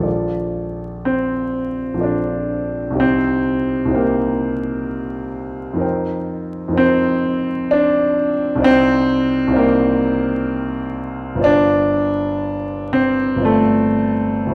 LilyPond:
\new Staff \with { instrumentName = "Grand piano" } { \time 3/4 \key bes \major \tempo 4 = 63 << { <bes,, f' a' d''>2 <bes,, f' a' d''>4 | <c, ees' g' c'' g''>4 <c, ees' g' c'' g''>2 | <f, ees' bes' c'' g''>4 <f, ees' bes' c'' g''>2 | <c, ees' c'' d'' g''>4 <c, ees' c'' d'' g''>2 |
\key g \mixolydian <g,, f' c'' d'' a''>2 <g,, f' c'' d'' a''>4 | } \\ { r4 c'4 d'4 | c'4 bes4. r8 | r4 c'4 d'4 | c'4 bes4. r8 |
d'4. c'8 a4 | } >> }